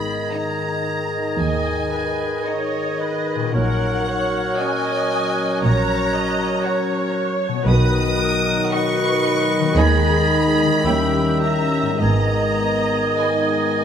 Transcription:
Already playing: double bass section G#1, harp G#2 B3 D#4 G#4, bassoon D#3, french horn section D#3 D#4, clarinet G#4, oboe D#5, violin section B5, flute section G#6
0.31 violin section D#4 D#5 A#5
1.38 cello section D#2, double bass section D#2, viola section D#5, violin section G#5
1.93 viola section B4
2.46 violin section D#4 D#5, viola section C#5
3.01 viola section B4
3.35 harp A#2
3.40 harp C#4
3.44 harp F#4
3.52 double bass section A#1, cello section A#2, bassoon F#3, french horn section F#3, clarinet A#4, viola section A#4, oboe C#5, violin section F#5, flute section F#6
4.08 viola section C#5
4.58 french horn section C#4, violin section F#4 C#5 G#5, viola section D#5
5.63 double bass section A#1, cello section A#2, viola section C#5, violin section A#5
6.15 viola section D#5
6.65 violin section F#4 C#5, viola section C#5
7.48 harp B2
7.53 harp B3
7.58 harp D#4
7.62 harp F#4
7.66 double bass section B1, cello section B2, bassoon D#3, french horn section F#3 D#4, clarinet F#4, viola section B4, oboe D#5, violin section D#6, flute section F#6
8.19 viola section A#4
8.72 violin section F#4 D#5 C#6, viola section B4
9.59 harp D#3
9.63 harp B3
9.68 harp D#4
9.72 harp G#4, flute section G#6
9.77 double bass section D#2, cello section D#2, french horn section G#3, clarinet D#4, viola section G#4, violin section G#4 D#5 B5
10.66 harp D#3
10.71 harp C#4
10.75 harp E4
10.80 harp G4
10.85 double bass section D#2, cello section D#2, french horn section G3 C#4, clarinet C#4, viola section G4, violin section G4 C#5, oboe E5, flute section G6
11.41 viola section E5, violin section A#5
11.82 harp G#2
11.86 harp B3
11.91 harp D#4
11.95 french horn section G#3 B3, harp G#4
11.99 double bass section G#1, cello section G#2, bassoon D#3, clarinet B3, oboe D#5, viola section D#5, violin section A#5, flute section G#6
13.17 clarinet D#4, violin section G#4 B4 G#5

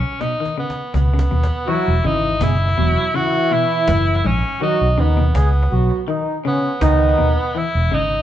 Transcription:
Already playing: tenor saxophone C#4
0.03 cajon slap
0.21 clean electric guitar B2, tenor saxophone D#4, cajon slap
0.40 clean electric guitar D#3
0.45 cajon slap
0.58 clean electric guitar C#3, tenor saxophone B3, cajon slap
0.70 cajon slap
0.77 cajon slap
0.94 fingered electric bass C#2, clean electric guitar B2, tenor saxophone B3, cajon bass, cajon slap
1.14 clean electric guitar C#3
1.19 cajon slap
1.31 fingered electric bass D#2, clean electric guitar B2
1.43 cajon slap
1.67 clean electric guitar E3, trombone section F#3 F#4, tenor saxophone E4, cajon slap
1.88 fingered electric bass E1
2.04 fingered electric bass G#1, clean electric guitar C#3, trombone section E3 E4, tenor saxophone D#4, cajon slap
2.24 cajon slap
2.40 fingered electric bass F#1, clean electric guitar B2, trombone section G#3 G#4, tenor saxophone E4, cajon bass, cajon slap
2.77 fingered electric bass E1, clean electric guitar B2, trombone section F#3 F#4, cajon slap
2.97 cajon slap
3.14 clean electric guitar C#3, trombone section E3 E4, tenor saxophone F#4, cajon slap
3.51 clean electric guitar B2, tenor saxophone E4, cajon slap
3.71 cajon slap
3.88 fingered electric bass F#1, clean electric guitar G#2, cajon bass, cajon slap
4.25 fingered electric bass A#1, clean electric guitar G#2, tenor saxophone C#4
4.43 cajon slap
4.60 clean electric guitar D#3, trombone section F#3 F#4, tenor saxophone D#4, cajon slap
4.81 fingered electric bass B1
4.97 fingered electric bass D#2, clean electric guitar C#3, trombone section D#3 D#4, tenor saxophone B3, cajon slap
5.17 clean electric guitar B2, cajon slap
5.34 fingered electric bass C#2, trombone section G#3 G#4, tenor saxophone B3, cajon bass, cajon slap
5.71 fingered electric bass B1, trombone section F#3 F#4, cajon slap
5.90 cajon slap
6.08 clean electric guitar D#3, trombone section D#3 D#4, cajon slap
6.45 trombone section C#3 C#4, clean electric guitar C#3, tenor saxophone B3, cajon slap
6.64 cajon slap
6.81 fingered electric bass C#2, clean electric guitar B2, trombone section D#3 D#4, tenor saxophone B3, cajon bass, cajon slap
7.18 fingered electric bass D#2, clean electric guitar B2
7.37 cajon slap
7.55 clean electric guitar E3, tenor saxophone E4, cajon slap
7.75 fingered electric bass E1
7.91 fingered electric bass G#1, clean electric guitar C#3, tenor saxophone D#4, cajon slap
8.11 cajon slap

